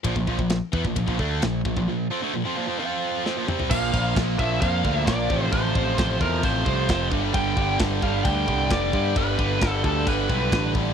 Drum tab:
CC |----------------|----------------|x---x---x---x---|x---x---x---x---|
RD |b---b---b---b---|----------------|----------------|----------------|
SD |----o-------o---|------------o---|----o-------o---|----o-------o---|
T2 |----------------|--------------o-|----------------|----------------|
FT |----------------|---------------o|----------------|----------------|
BD |oooo--ooooo---oo|----------------|o-o-o-o-o-o-o-o-|o-o-o-o-o-o-o-o-|

CC |x---x---x---x---|x---x---x---x---|
RD |----------------|----------------|
SD |----o-------o---|----o-------o---|
T2 |----------------|----------------|
FT |----------------|----------------|
BD |o-o-o-o-o-o-o-o-|o-o-o-o-o-o-o-o-|